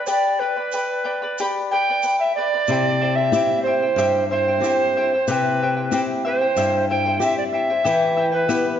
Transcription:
0.07 charango G4 B4 D5 G5 B5, recorder D5, shaker
0.39 recorder B4, charango B4 D5 G5 B5
0.56 charango B4 D5 B5
0.72 charango B4 D5 G5 B5, shaker
1.04 charango B4 D5 G5 B5
1.22 charango B4 D5 B5
1.38 charango G4 B4 D5 G5 B5, shaker
1.71 charango B4 D5 G5 B5, recorder G5
1.89 charango B4 D5 B5
2.03 charango B4 D5 G5 B5, shaker
2.20 recorder E5
2.35 charango B4 D5 G5 B5, recorder D5
2.54 charango B4 D5 B5
2.68 nylon-string guitar C3, charango E4 G4 C5 E5 G5, shaker
3.01 charango E4 C5 E5 G5
3.16 charango E4 C5 G5, recorder E5
3.32 nylon-string guitar C4 E4 G4, charango E4 C5 E5 G5, shaker
3.63 charango E4 E5, recorder C5
3.67 charango C5 G5
3.82 charango E4 C5 G5
3.96 nylon-string guitar G2, charango E4 G4 C5 E5 G5, shaker
4.29 charango E4 C5 E5 G5, recorder C5
4.48 charango E4 C5 G5
4.60 nylon-string guitar C4 E4 G4, charango E5, shaker
4.65 charango E4 C5 G5
4.96 charango E4 C5 E5 G5
5.14 charango E4 C5 G5
5.28 nylon-string guitar C3, charango E4 G4 E5 G5, recorder B4, shaker
5.62 charango E4 C5 E5 G5
5.77 charango E4 C5 G5
5.91 nylon-string guitar C4 E4 G4, charango E4 C5 E5 G5, shaker
6.25 charango E4 C5 E5 G5, recorder C5
6.41 charango E4 C5 G5
6.56 nylon-string guitar G2, charango E4 G4 C5 E5 G5, shaker
6.90 charango E4 C5 E5 G5, recorder G5
7.06 charango E4 C5 G5
7.19 nylon-string guitar C4 E4 G4, charango E4 C5 E5 G5, recorder E5, shaker
7.38 recorder D5
7.51 charango E4 C5 E5 G5, recorder E5
7.70 charango E4 C5 G5
7.84 nylon-string guitar E3, charango E4 G4 B4 E5 G5, shaker
8.17 charango E4 B4 E5 G5
8.32 charango E4 B4 G5, recorder B4
8.48 nylon-string guitar B3 E4 G4, charango E4 B4 E5 G5, shaker

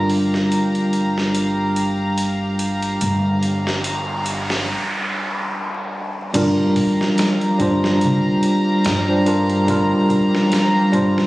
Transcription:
Already playing: upright bass G1, tine electric piano G3 D4 F4 A#4, violin section G4 F5 A#5
0.10 open hi-hat
0.34 snare
0.52 closed hi-hat
0.75 closed hi-hat
0.93 closed hi-hat
1.18 snare
1.35 closed hi-hat
1.76 closed hi-hat
2.18 closed hi-hat
2.59 closed hi-hat
2.82 closed hi-hat
3.01 upright bass G1, closed hi-hat, noise sweep
3.43 closed hi-hat
3.67 snare
3.84 closed hi-hat
4.26 closed hi-hat
4.50 snare
6.34 upright bass G1, tine electric piano G3 D4 F4 A#4, violin section G4 F5 A#5, kick, closed hi-hat, crash
6.76 kick, open hi-hat
7.01 snare
7.18 snare, closed hi-hat
7.41 closed hi-hat
7.59 upright bass G1, tine electric piano G3 D4 F4 C5, kick, closed hi-hat
7.84 snare
8.01 upright bass D2, closed hi-hat
8.43 closed hi-hat
8.85 upright bass G2, snare, closed hi-hat
9.08 tine electric piano G3 D4 F4 C5
9.26 tine electric piano G3 D4 F4 A#4, closed hi-hat
9.49 closed hi-hat
9.68 upright bass G1, tine electric piano G3 D4 F4 A#4, kick, closed hi-hat
10.10 kick, closed hi-hat
10.35 snare
10.52 snare, closed hi-hat
10.92 upright bass G1, tine electric piano G3 D4 F4 C5, kick, closed hi-hat
11.18 snare

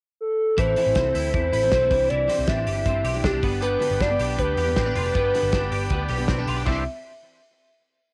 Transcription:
0.21 soft synth lead A4
0.58 picked electric bass A1, steel-string acoustic guitar A2 E3 A3 C4 E4 A4, clean electric guitar E3, soft synth lead C5, kick, closed hi-hat
0.76 steel-string acoustic guitar A2 E3 A3 C4 E4 A4, clean electric guitar E3, open hi-hat
0.86 picked electric bass A1
0.95 picked electric bass C2, clean electric guitar C4, kick, snare, closed hi-hat
1.05 steel-string acoustic guitar A3 C4 E4 A4
1.15 picked electric bass D2, clean electric guitar E4, open hi-hat
1.33 picked electric bass E2, clean electric guitar E3, steel-string acoustic guitar A3 C4 E4 A4, soft synth lead C5, kick, closed hi-hat
1.53 picked electric bass A1, clean electric guitar E4, open hi-hat
1.63 steel-string acoustic guitar A2 E3 A3 C4 E4 A4
1.72 picked electric bass B1, clean electric guitar C4, kick, snare, closed hi-hat
1.81 steel-string acoustic guitar A2 E3 A3 C4 E4 A4
1.90 picked electric bass C2, steel-string acoustic guitar C3 G3 D4 E4 G4, clean electric guitar E3, kick, open hi-hat
2.09 picked electric bass C2, clean electric guitar E3, soft synth lead D5, closed hi-hat
2.28 steel-string acoustic guitar C3 G3 D4 E4 G4, clean electric guitar C4, open hi-hat
2.39 picked electric bass C2
2.47 picked electric bass A1, clean electric guitar D4, soft synth lead E5, kick, snare, closed hi-hat
2.56 steel-string acoustic guitar D4 E4 G4
2.65 picked electric bass G1, clean electric guitar G4, soft synth lead E5, open hi-hat
2.86 picked electric bass G1, steel-string acoustic guitar G3 D4 E4 G4, clean electric guitar C4, kick, closed hi-hat
3.04 picked electric bass B1, clean electric guitar G4, open hi-hat
3.14 steel-string acoustic guitar C3 G3 D4 E4 G4
3.24 picked electric bass C2, clean electric guitar D4, soft synth lead G4, kick, snare, closed hi-hat
3.32 steel-string acoustic guitar C3 G3 D4 E4 G4
3.42 picked electric bass G1, steel-string acoustic guitar G2 D3 G3 B3 D4 G4, clean electric guitar B3, kick, open hi-hat
3.61 clean electric guitar B3, transistor combo organ D4 G4 B4, soft synth lead B4, closed hi-hat
3.79 steel-string acoustic guitar G2 D3 G3 B3 D4 G4, clean electric guitar B3, open hi-hat
3.91 picked electric bass G1
4.00 picked electric bass G1, clean electric guitar D4, soft synth lead D5, kick, snare, closed hi-hat
4.09 steel-string acoustic guitar G3 B3 D4 G4
4.19 picked electric bass B1, clean electric guitar G4, open hi-hat
4.37 picked electric bass D2, steel-string acoustic guitar G3 B3 D4 G4, clean electric guitar B3, soft synth lead B4, kick, closed hi-hat
4.57 picked electric bass E2, clean electric guitar G4, open hi-hat
4.65 steel-string acoustic guitar G2 D3 G3 B3 D4 G4
4.76 picked electric bass A1, clean electric guitar C4, kick, snare, closed hi-hat
4.85 steel-string acoustic guitar G2 D3 G3 B3 D4 G4, clean electric guitar D4
4.95 picked electric bass F1, clean electric guitar F4, open hi-hat
5.06 clean electric guitar G4
5.14 picked electric bass G1, steel-string acoustic guitar G2 D3 G3 B3 D4 G4, clean electric guitar B3, kick, closed hi-hat
5.33 steel-string acoustic guitar G2 D3 G3 B3 D4 G4, clean electric guitar B3, open hi-hat
5.43 picked electric bass G1
5.52 picked electric bass G1, clean electric guitar D4, kick, snare, closed hi-hat
5.62 steel-string acoustic guitar G3 B3 D4 G4
5.71 picked electric bass G1, clean electric guitar G4, open hi-hat
5.89 picked electric bass D2, steel-string acoustic guitar G3 B3 D4 G4, clean electric guitar B3, kick, closed hi-hat
6.08 picked electric bass B1, clean electric guitar G4, open hi-hat
6.18 steel-string acoustic guitar G2 D3 G3 B3 D4 G4
6.28 picked electric bass B1, clean electric guitar C4, kick, snare, closed hi-hat
6.37 steel-string acoustic guitar G2 D3 G3 B3 D4 G4, clean electric guitar D4
6.47 picked electric bass B1, clean electric guitar F4, open hi-hat
6.57 clean electric guitar G4
6.65 picked electric bass C2, steel-string acoustic guitar C3 G3 D4 E4 G4, clean electric guitar E3 C4 D4 G4, transistor combo organ D4 E4 C5, soft synth lead E5, kick, crash

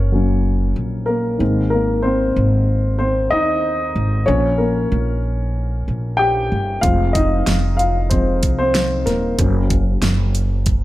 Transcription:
Already playing: upright bass F#1, upright piano A#3 C#4 A#4 C#5
0.12 upright piano F#3 A#3 C#4
0.76 upright bass A#1
1.06 upright piano A#3 A#4
1.38 upright bass G#1, upright piano D#3 G#3 C4
1.70 upright piano A#3 A#4
2.02 upright piano C4 C5
2.36 upright bass G#1
2.99 upright piano C4 C5
3.30 upright bass D#2, upright piano D#4 D#5
3.96 upright bass G#1
4.26 upright bass A#1, upright piano F3 A#3 C#4 C#5
4.58 upright piano A#3 A#4
4.92 upright bass A#1
5.88 upright bass A#1
6.17 upright piano G4 G5
6.52 upright bass G1
6.81 upright bass F1, upright piano F3 G#3 C4 F4 F5, kick, closed hi-hat
7.13 upright piano D#4 D#5, kick, closed hi-hat
7.47 upright bass F1, snare, closed hi-hat
7.77 upright piano F4 F5, closed hi-hat
8.10 upright piano F3 G#3 C4 C5, kick, closed hi-hat
8.43 upright bass C2, kick, closed hi-hat
8.59 upright piano C4 C5
8.75 snare, closed hi-hat
9.06 upright bass D#1, upright piano A#3 A#4, snare, closed hi-hat
9.38 upright bass F#1, upright piano F#3 A#3 C#4, kick, closed hi-hat
9.70 kick, closed hi-hat
10.02 upright bass F#1, snare, closed hi-hat
10.35 closed hi-hat
10.66 kick, closed hi-hat

